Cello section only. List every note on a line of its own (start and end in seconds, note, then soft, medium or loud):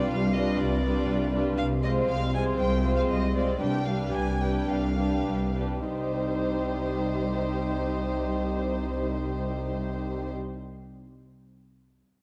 0.13 0.55 C2 soft
0.61 1.04 C2 medium
1.10 1.53 C2 soft
1.58 2.02 C2 medium
2.09 2.53 C2 soft
2.60 3.04 C2 medium
3.10 3.55 C2 soft
3.61 4.08 C2 soft
4.15 4.63 C2 soft
4.70 5.21 C2 soft
5.28 5.81 C2 soft
5.87 10.32 C2 soft